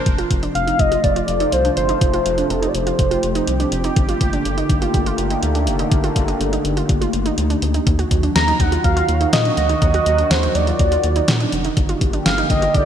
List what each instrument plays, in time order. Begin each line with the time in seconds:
0.06 analog synth bass F1, analog synth pad C3 F3 A3 F4, kick, closed hi-hat
0.18 synth pluck F4, closed hi-hat
0.31 analog synth bass F1, kick, closed hi-hat
0.43 synth pluck D4, closed hi-hat
0.55 analog synth bass F1, soft synth lead F5, closed hi-hat
0.67 synth pluck D#4, closed hi-hat
0.79 analog synth bass F1, soft synth lead D#5, kick, closed hi-hat
0.92 synth pluck F4, closed hi-hat
1.04 analog synth bass F1, soft synth lead D5, kick, closed hi-hat
1.16 synth pluck F4, closed hi-hat
1.28 analog synth bass F1, closed hi-hat
1.40 synth pluck D#4, closed hi-hat
1.52 analog synth bass C2, soft synth lead C5, closed hi-hat
1.65 synth pluck D4, closed hi-hat
1.77 analog synth bass G1, soft synth lead C5, closed hi-hat
1.89 synth pluck D#4, closed hi-hat
2.01 analog synth bass F1, analog synth pad G4, soft synth lead C5, kick, closed hi-hat
2.14 synth pluck F4, closed hi-hat
2.26 analog synth bass F1, closed hi-hat
2.38 synth pluck D4, closed hi-hat
2.50 analog synth bass F1, soft synth lead A4, closed hi-hat
2.62 synth pluck D#4, closed hi-hat
2.68 soft synth lead D5
2.74 analog synth bass F1, soft synth lead C5, closed hi-hat
2.87 synth pluck F4, closed hi-hat
2.99 analog synth bass F1, kick, closed hi-hat
3.11 synth pluck F4, closed hi-hat
3.23 analog synth bass F1, closed hi-hat
3.35 synth pluck D#4, closed hi-hat
3.47 analog synth bass C2, closed hi-hat
3.60 synth pluck D4, closed hi-hat
3.72 analog synth bass F1, closed hi-hat
3.84 synth pluck D#4, closed hi-hat
3.96 analog synth bass G1, analog synth pad D3 A3 A#3, kick, closed hi-hat
4.09 synth pluck F4, closed hi-hat
4.21 analog synth bass G1, kick, closed hi-hat
4.33 synth pluck D4, closed hi-hat
4.45 analog synth bass G1, closed hi-hat
4.57 synth pluck D#4, closed hi-hat
4.69 analog synth bass G1, kick, closed hi-hat
4.82 synth pluck F4, closed hi-hat
4.94 analog synth bass G1, kick, closed hi-hat
5.06 synth pluck F4, closed hi-hat
5.18 analog synth bass G1, closed hi-hat
5.30 synth pluck D#4, closed hi-hat
5.43 analog synth bass D2, closed hi-hat
5.55 synth pluck D4, closed hi-hat
5.67 analog synth bass F1, closed hi-hat
5.79 synth pluck D#4, closed hi-hat
5.92 analog synth bass G1, kick, closed hi-hat
6.04 synth pluck F4, closed hi-hat
6.16 analog synth bass G1, kick, closed hi-hat
6.28 synth pluck D4, closed hi-hat
6.40 analog synth bass G1, closed hi-hat
6.53 synth pluck D#4, closed hi-hat
6.65 analog synth bass G1, closed hi-hat
6.77 synth pluck F4, closed hi-hat
6.89 analog synth bass G1, kick, closed hi-hat
7.01 synth pluck F4, closed hi-hat
7.13 analog synth bass G1, closed hi-hat
7.26 synth pluck D#4, closed hi-hat
7.38 analog synth bass D2, closed hi-hat
7.50 synth pluck D4, closed hi-hat
7.62 analog synth bass D2, closed hi-hat
7.74 synth pluck D#4, closed hi-hat
7.87 analog synth bass D#2, analog synth pad D#3 F#3 F#4, kick, closed hi-hat
7.99 synth pluck F#4, closed hi-hat
8.11 analog synth bass D#2, kick, closed hi-hat
8.23 synth pluck D4, closed hi-hat
8.35 analog synth bass D#2, soft synth lead A#5, snare, closed hi-hat
8.48 synth pluck D#4, closed hi-hat
8.60 analog synth bass D#2, soft synth lead F#5, kick, closed hi-hat
8.72 synth pluck F4, closed hi-hat
8.84 analog synth bass D#2, soft synth lead F5, kick, closed hi-hat
8.96 synth pluck F4, closed hi-hat
9.09 analog synth bass D#2, closed hi-hat
9.21 synth pluck D#4, closed hi-hat
9.33 analog synth bass A#2, soft synth lead D#5, snare, closed hi-hat
9.45 synth pluck D4, closed hi-hat
9.57 analog synth bass D2, soft synth lead D#5, closed hi-hat
9.69 synth pluck D#4, closed hi-hat
9.82 analog synth bass D#2, soft synth lead D#5, kick, closed hi-hat
9.94 synth pluck F#4, closed hi-hat
10.06 analog synth bass D#2, closed hi-hat
10.18 synth pluck D4, closed hi-hat
10.30 analog synth bass D#2, soft synth lead C5, snare, closed hi-hat
10.43 synth pluck D#4, closed hi-hat
10.55 analog synth bass D#2, soft synth lead D5, closed hi-hat
10.67 synth pluck F4, closed hi-hat
10.79 analog synth bass D#2, kick, closed hi-hat
10.92 synth pluck F4, closed hi-hat
11.04 analog synth bass D#2, closed hi-hat
11.16 synth pluck D#4, closed hi-hat
11.28 analog synth bass A#2, snare, closed hi-hat
11.40 synth pluck D4, closed hi-hat
11.52 analog synth bass F1, closed hi-hat
11.65 synth pluck D#4, closed hi-hat
11.77 analog synth bass G1, analog synth pad D3 A#3 G4, kick, closed hi-hat
11.89 synth pluck F4, closed hi-hat
12.01 analog synth bass G1, kick, closed hi-hat
12.13 synth pluck D4, closed hi-hat
12.26 analog synth bass G1, soft synth lead F5, snare, closed hi-hat
12.38 synth pluck D#4, closed hi-hat
12.50 analog synth bass G1, soft synth lead D#5, kick, closed hi-hat
12.62 synth pluck F4, closed hi-hat
12.74 analog synth bass G1, soft synth lead D5, kick, closed hi-hat